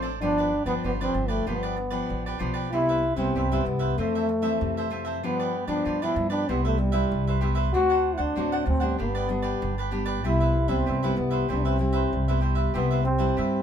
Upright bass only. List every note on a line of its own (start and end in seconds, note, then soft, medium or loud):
0.00 0.21 A1 medium
0.21 0.62 G1 medium
0.66 0.80 G1 medium
0.84 1.11 G1 medium
1.14 1.42 G1 medium
1.48 2.01 G1 medium
2.10 2.38 A1 medium
2.40 2.73 B1 medium
2.73 3.13 C2 medium
3.17 3.31 C2 medium
3.35 3.62 C2 medium
3.65 3.93 C2 medium
3.98 4.51 F2 medium
4.61 5.23 F2 medium
5.23 5.63 G2 medium
5.68 5.82 G2 medium
5.86 6.13 G2 medium
6.16 6.43 G2 medium
6.49 7.02 C2 medium
7.12 7.74 C2 medium
7.74 8.14 D2 loud
8.19 8.33 D2 medium
8.37 8.63 D2 medium
8.67 8.94 D2 medium
9.00 9.53 G1 medium
9.62 10.25 G1 loud
10.25 10.65 C2 medium
10.69 10.83 C2 medium
10.88 11.14 C2 medium
11.17 11.45 C2 medium
11.50 12.03 C2 medium
12.13 12.66 C2 medium
12.75 13.28 C2 medium
13.38 13.62 G2 medium